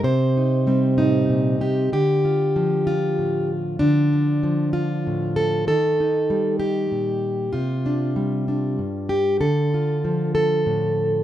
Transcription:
steel-string acoustic guitar
0.03 C3 C5
0.37 D#4
0.67 G3 C4
0.98 A2 D#4
1.29 A#2
1.61 C3 G4
1.93 D3 G4
2.25 F4
2.56 F3
2.87 F4
3.18 A2
3.79 D3 D4
4.13 F3
4.43 F3
4.73 F4
5.07 A2
5.36 A4
5.67 D#3 A4
6.00 D#4
6.30 G3
6.60 G4
6.92 A#2
7.53 C3 F4
7.86 D4
8.16 G3
8.48 D4
8.79 G2
9.09 G4
9.41 D3 A4
9.74 F4
10.04 F3
10.35 A4
10.66 A2

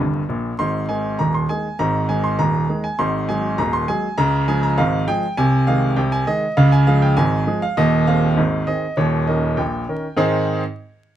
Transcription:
grand piano
Already playing: D#5
0.00 G1 G2
0.29 A#1 A#2
0.59 G#1 G#2 C6
0.89 D#3 G#3 G#4 G#5
1.19 D#1 D#2 A#5
1.34 C6
1.49 D#3 G#3 G#4 G#5
1.79 G#1 G#2 A#5
2.09 D#3 G#3 G#4 G#5
2.24 C6
2.39 D#1 D#2 A#5
2.69 D#3 G#3 G#4
2.84 G#5
2.99 G#1 G#2 C6
3.29 F#3 G#3 G#4 G#5
3.58 D#1 D#2 A#5
3.73 C6
3.88 F#3 G#3 G#4 G#5
4.18 C#2 C#3 A#5
4.48 F3 G#3 G#4 G#5
4.63 A#5
4.78 G#1 G#2 F5
5.08 F3 G#3 G#4 G5
5.37 C2 C3 G#5
5.67 D#3 G#3 G#4 F5
5.96 C2 C3 G5
6.12 G#5
6.27 D#3 G#3 G#4 D#5
6.57 C#2 C#3 F5
6.72 G#5
6.87 F3 G#3 G#4 F5
7.02 G5
7.17 G#1 G#2 G#5
7.47 F3 G#3 G#4
7.62 F5
7.77 D#1 D#2 D#5
8.07 D#3 C4 G#4 F5
8.37 G#1 G#2
8.67 D#3 C4 G#4 D#5
8.97 D#1 D#2 C#5
9.27 D#3 C#4 A#4 D#5
9.57 A#1 A#2 G5
9.89 D#3 C#4 A#4
10.17 G#2 D#3 C4 D#4 G#4 C5 C6

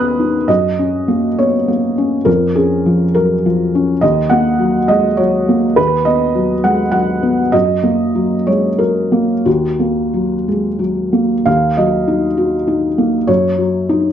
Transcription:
felt piano
Already playing: D#2 B3 C#4 D#4 A#4 B4 B5 D#6 F#6
0.20 D#4
0.48 F#2 D#5
0.79 C#4
1.08 A#3
1.39 B3 C#5
1.68 A#3
1.98 C#4
2.25 F2 A#4
2.55 C#4 G#4
2.86 F3
3.14 F#3 A#4
3.46 F3
3.75 C#4
4.01 D#2 D#5
4.30 A#3 F#5
4.59 F#3
4.88 G#3 D#5
5.17 F#3 C#5
5.49 A#3
5.76 D#2 B4
6.05 B3 D#5
6.35 F#3
6.64 G#3 F#5
6.92 F#3 F#5
7.23 B3
7.52 F#2 D#5
7.83 A#3
8.15 F#3
8.47 G#3 C#5
8.78 F#3 A#4
9.12 A#3
9.45 D#2 F#4
9.80 A#3
10.14 F#3
10.48 G#3
10.79 F#3
11.13 A#3
11.46 D#2 F5
11.77 F#3 D#5
12.08 D#4
12.37 F#4
12.67 D#4
12.98 A#3
13.27 F#2 C#5
13.58 F#3
13.89 D#4

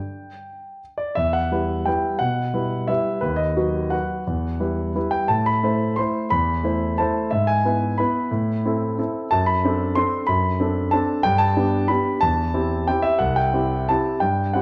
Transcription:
grand piano
Already playing: G5
0.98 D5
1.15 E2 E5
1.33 F#5
1.52 G3 E4 B4
1.86 G3 E4 B4 G5
2.19 B2 F#5
2.54 G3 E4 B4
2.87 G3 E4 B4 E5
3.21 D#2 B4
3.36 D#5
3.56 F#3 F#4 B4
3.90 F#3 F#4 B4 F#5
4.27 E2
4.60 G3 E4 B4
4.95 G3 E4 B4
5.11 G5
5.28 A2 A5
5.46 B5
5.63 A3 E4 C5
5.96 A3 E4 C5 C6
6.30 E2 B5
6.64 A3 E4 C5
6.98 A3 E4 C5 A5
7.31 G#2 E5
7.47 G#5
7.65 B3 E4 B4
7.98 B3 E4 B4 B5
8.31 A2
8.65 C4 E4 A4
8.98 C4 E4 A4
9.31 F#2 A5
9.46 B5
9.65 C4 D4 A4
9.95 C4 D4 A4 C6
10.27 F#2 B5
10.60 C4 D4 A4
10.91 C4 D4 A4 A5
11.23 G2 G5
11.38 A5
11.57 B3 D4 G4
11.88 B3 D4 G4 B5
12.21 E2 A5
12.54 C4 E4 G4
12.87 C4 E4 G4 G5
13.02 E5
13.19 C2 F#5
13.36 G5
13.54 C4 E4 G4
13.89 C4 E4 G4 A5
14.20 G2 G5
14.53 C4 E4 G4 F#5

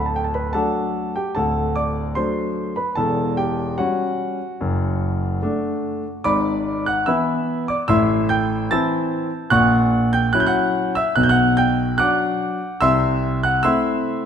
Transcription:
grand piano
Already playing: D1 D2
0.06 A5
0.16 G5
0.24 A5
0.34 B4 B5
0.53 F#3 A3 D4 A4 F#5 A5
1.16 G4 G5
1.35 D1 D2 A4 F#5 A5
1.76 D5 D6
2.15 F#3 A3 D4 C5 C6
2.76 B4 B5
2.95 E1 E2 A4 A5
3.37 G4 G5
3.78 G3 C#4 F#4 F#5
4.61 F#1 F#2
5.42 A3 D4
6.24 G#1 G#2 D5 B5 D6
6.86 F#5 F#6
7.06 E3 B3 E4 E5 B5 E6
7.68 D5 D6
7.88 A1 A2 E5 C6 E6
8.29 G5 G6
8.71 E3 C4 E4 A5 E6 A6
9.50 A#1 A#2 F#5 C#6 F#6
10.13 G5 G6
10.33 F#3 C#4 E4 F#6
10.40 G6
10.46 F#5 F#6
10.95 E5 E6
11.16 B1 B2 F#6
11.23 G6
11.29 F#5 F#6
11.57 G5 G6
11.98 F#3 D4 F#5 D6 F#6
12.81 C2 C3 E5 C6 E6
13.43 F#5 F#6
13.63 A3 C4 E4 E5 C6 E6

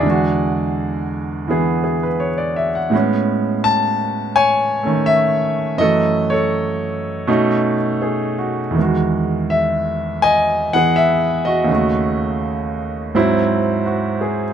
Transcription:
grand piano
Already playing: G#4 D5
0.00 E2 D3
0.06 G#3 F#4
1.47 E3 B3 G#4
1.84 G#4
2.03 B4
2.20 C#5
2.38 D5
2.56 E5
2.75 F#5
2.90 A2 G#3 B3
2.95 C#4
3.64 A5
4.36 C#5 G#5
4.83 D#3 A3 C#4
5.06 E5
5.77 F#2 E3 F#3 A4 D#5
5.82 A3
6.30 A4 C#5
7.27 B2 A3 C#4 D#4
8.02 G#4
8.38 F#4
8.71 E2 D#3
8.79 G#3 F#4
9.50 E5
10.22 D#5 G#5
10.73 E3 B3 G#4 F#5
10.96 E5
11.45 F#4 D#5
11.64 D#2 C#3
11.71 A3 F#4
13.15 G#2 F#3 C4 E4
13.86 F#4
14.21 G#4

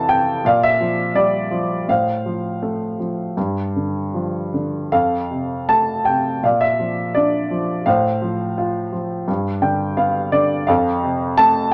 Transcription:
grand piano
Already playing: F2 C3 E3 A4 F5 A5
0.08 C3 G5
0.45 A#2 D5 F5
0.63 E5
0.80 F3
1.15 G3 D5
1.51 F3
1.88 A2 C5 F5
2.26 F3
2.62 A3
3.00 F3
3.37 G2
3.76 D3
4.14 F3
4.54 D3
4.92 F2 A4 F5
5.31 C3
5.69 A3 A5
6.05 C3 G5
6.43 A#2 D5 F5
6.61 E5
6.80 F3
7.15 D4 D5
7.51 F3
7.86 A2 C5 F5
8.22 F3
8.58 F4
8.93 F3
9.28 G2
9.62 D3 G5
9.97 B3 F5
10.32 D3 D5
10.67 F2 A4 F5
11.03 C3
11.38 A3 A5

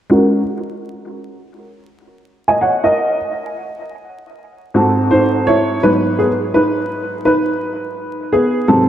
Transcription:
upright piano
0.10 G#3 C#4 F#4 A#4
2.48 D#5 G#5
2.61 C#5 F#5
2.84 A#4 D#5
4.74 G#2 C4 D#4 F#4 A4
5.11 D#4 C5
5.47 E4 C#5
5.83 G#2 F#3 B3 D#4 B4
6.19 B3 G#4
6.54 D#4 B4
7.25 D#4 B4
8.33 B3 G#4
8.68 G#2 C3 F#3 C4 A4

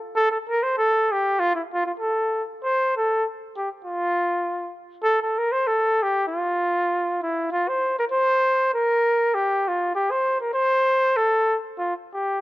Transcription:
flugelhorn
0.15 A4
0.31 A4
0.49 A#4
0.63 C5
0.78 A4
1.12 G4
1.40 F4
1.55 E4
1.73 F4
1.86 F4
2.00 A4
2.63 C5
2.97 A4
3.57 G4
3.85 F4
5.04 A4
5.22 A4
5.38 A#4
5.52 C5
5.67 A4
6.03 G4
6.28 F4
7.23 E4
7.52 F4
7.69 C5
7.99 A#4
8.12 C5
8.74 A#4
9.34 G4
9.68 F4
9.95 G4
10.11 C5
10.41 A#4
10.54 C5
11.17 A4
11.78 F4
12.14 G4

